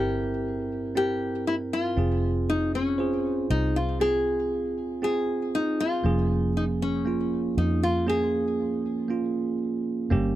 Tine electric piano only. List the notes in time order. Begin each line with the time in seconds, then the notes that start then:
Already playing: C4 E4 A#4 E5
0.95 C4 E4 A#4
1.97 C4 F4 G#4
2.98 F4 G#4 C5
4.00 C4 F4 G#4
5.02 C4 F4 G#4
6.04 F3 A#3 C#4 G#4
7.05 A#3 C#4 F4
8.06 A#3 C#4 G#4
9.08 A#3 C#4 F4
10.10 G2 G3 A#3 C#4 G4